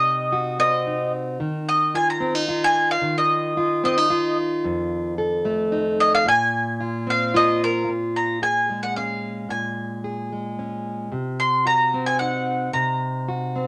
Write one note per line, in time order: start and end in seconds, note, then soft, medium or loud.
0.00 1.37 C3 medium
0.00 0.86 D#4 medium
0.00 0.58 D#5 medium
0.32 1.37 F#4 medium
0.59 1.37 C4 medium
0.59 1.12 D#5 medium
0.87 1.98 D#4 medium
1.40 3.00 D#3 medium
1.69 1.94 D#5 medium
1.95 2.48 F4 medium
1.95 2.07 G#5 medium
2.10 2.61 A#5 medium
2.20 2.35 C4 medium
2.35 3.02 D#4 soft
2.48 3.57 F4 medium
2.64 2.89 G#5 medium
2.91 3.16 F5 medium
3.02 6.26 D#3 medium
3.18 3.82 D#5 medium
3.57 4.10 F4 medium
3.84 3.98 C4 medium
3.84 4.36 D#5 medium
3.98 4.65 D#4 medium
4.10 5.18 F4 medium
4.64 6.26 F2 medium
5.18 6.23 A4 medium
5.45 6.23 A3 medium
5.72 6.23 D#4 medium
6.00 6.12 D#5 medium
6.15 6.26 F5 medium
6.25 7.86 A#2 medium
6.25 7.06 G#5 medium
6.80 7.33 F4 medium
7.07 7.85 C4 medium
7.07 7.35 F5 medium
7.34 8.42 F4 medium
7.34 7.61 D#5 medium
7.64 7.89 A#4 medium
7.88 9.48 A#2 medium
8.16 8.41 A#5 medium
8.42 9.47 G#4 medium
8.42 8.80 G#5 medium
8.70 10.31 G#3 medium
8.83 8.95 F#5 medium
8.96 9.47 C#4 soft
8.96 9.50 F5 medium
9.49 11.11 A#2 medium
9.49 10.54 G#5 medium
10.04 11.09 G#4 medium
10.32 11.13 G#3 soft
10.59 11.09 C#4 soft
11.12 12.71 C3 medium
11.40 11.66 C6 medium
11.66 12.70 F#4 medium
11.66 12.06 A#5 medium
11.94 12.71 C4 medium
12.06 12.19 G#5 medium
12.19 13.67 D#4 soft
12.19 12.73 F#5 medium
12.73 13.67 C3 medium
12.73 13.67 A#5 medium
13.28 13.67 F#4 medium
13.56 13.67 C4 medium